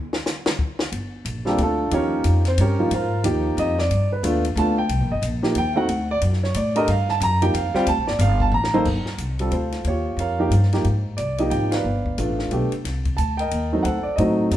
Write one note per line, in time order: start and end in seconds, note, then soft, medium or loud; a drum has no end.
0.13 snare medium
0.26 snare loud
0.26 hi-hat pedal medium
0.46 snare loud
0.59 kick medium
0.79 snare loud
0.92 1.24 G1 medium
0.92 ride medium
1.25 1.57 A#1 medium
1.25 hi-hat pedal soft
1.25 ride medium
1.45 1.57 G3 medium
1.45 1.59 A#3 medium
1.45 1.57 C4 medium
1.45 1.59 D4 medium
1.45 1.57 F4 medium
1.45 1.59 G4 medium
1.45 1.57 A4 medium
1.45 snare soft
1.58 1.90 D2 medium
1.58 ride medium
1.63 1.92 A3 medium
1.63 1.92 D4 medium
1.63 1.92 F4 medium
1.63 1.92 A4 medium
1.91 2.24 D#2 medium
1.91 2.41 F3 medium
1.91 2.41 A#3 medium
1.91 2.24 C#4 medium
1.91 2.41 D#4 medium
1.91 2.41 G4 medium
1.91 2.24 A#4 medium
1.91 2.24 C#5 medium
1.91 ride medium
2.24 2.57 F2 medium
2.24 hi-hat pedal medium
2.24 ride medium
2.45 2.59 C4 medium
2.45 2.59 C5 medium
2.45 snare soft
2.45 ride soft
2.58 2.90 G2 medium
2.58 2.90 C#4 medium
2.58 2.90 G4 medium
2.58 2.90 A#4 medium
2.58 2.90 C#5 medium
2.58 ride medium
2.79 2.90 F3 medium
2.79 2.90 A#3 medium
2.79 2.90 D#4 medium
2.79 2.90 F4 medium
2.91 3.23 G#2 medium
2.91 3.24 F4 medium
2.91 3.24 A#4 medium
2.91 3.23 C5 medium
2.91 3.23 F5 medium
2.91 ride medium
3.23 3.56 D#2 loud
3.23 3.73 F3 medium
3.23 3.74 A#3 medium
3.23 3.74 D#4 medium
3.23 3.74 G4 medium
3.23 hi-hat pedal medium
3.23 ride medium
3.57 3.89 F2 medium
3.57 3.78 D#5 medium
3.57 ride medium
3.79 4.09 D5 medium
3.79 snare medium
3.90 4.22 G2 medium
3.90 ride medium
4.12 4.24 B4 medium
4.23 4.55 D#2 medium
4.23 4.42 A3 medium
4.23 4.42 B3 medium
4.23 4.42 D4 medium
4.23 4.42 F4 medium
4.23 hi-hat pedal medium
4.23 ride medium
4.45 ride medium
4.56 4.88 D2 medium
4.56 4.75 A3 medium
4.56 4.75 B3 medium
4.56 4.75 D4 medium
4.56 4.76 F4 medium
4.56 4.77 A5 medium
4.56 ride medium
4.78 5.08 G5 medium
4.89 5.00 C2 medium
4.89 ride medium
5.00 5.10 A#1 medium
5.11 5.21 G1 medium
5.11 5.23 D#5 medium
5.22 5.54 A#1 medium
5.22 hi-hat pedal medium
5.22 ride medium
5.42 5.54 F3 medium
5.42 5.54 A#3 medium
5.42 5.54 D#4 medium
5.42 5.54 G4 medium
5.42 snare medium
5.55 5.87 D#2 medium
5.55 5.77 G5 loud
5.55 ride medium
5.73 5.87 A3 medium
5.73 5.87 C4 medium
5.73 5.87 D#4 medium
5.73 5.87 F#4 medium
5.73 5.75 F5 medium
5.77 6.07 F#5 loud
5.88 6.20 D2 medium
5.88 ride medium
6.11 6.18 D5 loud
6.21 6.54 F#2 loud
6.21 ride medium
6.33 snare soft
6.43 6.55 C#5 medium
6.43 snare soft
6.54 6.87 A2 loud
6.54 6.76 D5 medium
6.54 hi-hat pedal medium
6.54 ride medium
6.75 6.86 A3 medium
6.75 6.87 D4 medium
6.75 6.87 G4 medium
6.75 6.87 A#4 medium
6.75 6.88 D#5 medium
6.75 ride medium
6.88 7.20 G2 medium
6.88 7.08 F5 medium
6.88 ride medium
7.08 7.21 A5 loud
7.08 snare soft
7.20 7.52 F#2 loud
7.20 7.42 A#5 loud
7.20 hi-hat pedal medium
7.20 ride medium
7.42 7.53 F3 medium
7.42 7.53 A#3 medium
7.42 7.53 D#4 medium
7.42 7.53 G4 medium
7.42 7.54 G5 medium
7.42 ride medium
7.54 7.73 F2 loud
7.54 7.74 F5 medium
7.54 ride medium
7.74 7.85 G3 medium
7.74 7.86 C4 medium
7.74 7.86 F4 medium
7.74 7.86 C5 medium
7.74 7.87 G5 medium
7.74 muted upright bass stroke soft
7.74 snare soft
7.86 7.99 D2 medium
7.86 8.08 A5 loud
7.86 ride medium
7.97 8.07 A#1 medium
8.07 8.18 G1 medium
8.07 8.19 D5 medium
8.07 snare medium
8.19 8.51 G1 loud
8.19 8.41 F5 loud
8.19 hi-hat pedal medium
8.19 ride medium
8.40 8.53 A5 medium
8.40 kick medium
8.52 8.84 A1 loud
8.52 8.79 A#5 medium
8.64 snare medium
8.74 8.85 A#3 medium
8.74 8.85 D#4 medium
8.74 8.85 A4 medium
8.74 8.85 C5 medium
8.74 mid tom medium
8.85 9.05 G1 medium
8.85 kick medium
8.85 crash medium
9.05 muted upright bass stroke soft
9.05 snare soft
9.18 9.50 C2 medium
9.18 hi-hat pedal medium
9.18 ride medium
9.39 9.51 G3 medium
9.39 9.51 C4 medium
9.39 9.51 F4 medium
9.39 9.52 A4 medium
9.39 ride soft
9.51 9.84 D2 medium
9.51 9.84 F4 medium
9.51 9.84 A4 soft
9.51 9.87 C5 medium
9.51 ride soft
9.72 snare soft
9.72 ride soft
9.84 10.16 D#2 medium
9.84 10.37 F4 medium
9.84 10.37 G4 soft
9.84 10.19 C#5 medium
9.84 ride medium
10.17 10.50 F2 medium
10.17 10.70 A#4 medium
10.17 10.70 C#5 medium
10.17 10.69 F5 medium
10.17 ride soft
10.39 10.50 F3 medium
10.39 10.51 A#3 medium
10.39 10.51 D#4 medium
10.39 10.51 G4 medium
10.50 10.83 G2 medium
10.50 hi-hat pedal soft
10.50 ride medium
10.63 snare soft
10.73 10.84 F3 medium
10.73 10.84 A#3 medium
10.73 10.84 D#4 medium
10.73 10.84 G4 medium
10.73 snare soft
10.73 ride soft
10.84 11.17 G#2 medium
10.84 ride soft
11.17 11.51 C2 medium
11.17 11.37 D5 medium
11.17 hi-hat pedal soft
11.17 ride medium
11.38 11.82 F3 medium
11.38 11.82 A#3 medium
11.38 11.83 D#4 medium
11.38 11.83 G4 medium
11.38 11.51 D#5 medium
11.38 ride soft
11.50 11.84 G#1 medium
11.50 11.72 G5 medium
11.50 ride medium
11.71 12.36 B4 medium
11.71 12.36 D5 medium
11.71 12.34 F5 medium
11.71 snare medium
11.71 ride medium
11.84 12.17 G1 medium
12.06 kick soft
12.18 12.50 A1 medium
12.18 12.50 A3 medium
12.18 12.50 B3 soft
12.18 12.50 D4 soft
12.18 12.51 F4 medium
12.18 hi-hat pedal soft
12.18 ride medium
12.39 snare soft
12.51 12.70 B1 medium
12.51 12.70 A3 medium
12.51 12.70 B3 medium
12.51 12.70 D4 medium
12.51 12.71 G4 medium
12.51 ride medium
12.72 muted upright bass stroke soft
12.72 ride soft
12.84 13.17 C2 medium
12.84 snare soft
12.84 ride medium
13.05 kick soft
13.05 ride soft
13.17 13.50 D2 medium
13.17 13.37 A5 medium
13.17 hi-hat pedal soft
13.17 ride medium
13.37 13.82 A#4 medium
13.37 13.82 D#5 medium
13.37 13.69 G5 medium
13.37 ride soft
13.51 13.84 D#2 medium
13.51 ride medium
13.72 13.83 F#3 medium
13.72 13.84 A3 medium
13.72 13.84 C4 medium
13.72 13.84 D#4 medium
13.83 14.04 D2 medium
13.83 14.36 A4 medium
13.83 14.18 C5 medium
13.83 14.03 F#5 medium
13.83 ride medium
14.03 14.17 D5 medium
14.03 muted upright bass stroke soft
14.16 14.50 A2 medium
14.16 14.50 F#3 medium
14.16 14.50 A3 medium
14.16 14.51 C4 medium
14.16 14.57 F#4 soft
14.16 14.57 C5 soft
14.16 14.57 D#5 medium
14.16 ride medium
14.20 14.51 D#4 medium
14.51 14.57 F#2 medium
14.51 14.57 F#3 medium
14.51 14.57 A3 medium
14.51 14.57 C4 medium
14.51 14.57 D4 medium
14.51 hi-hat pedal medium
14.51 ride medium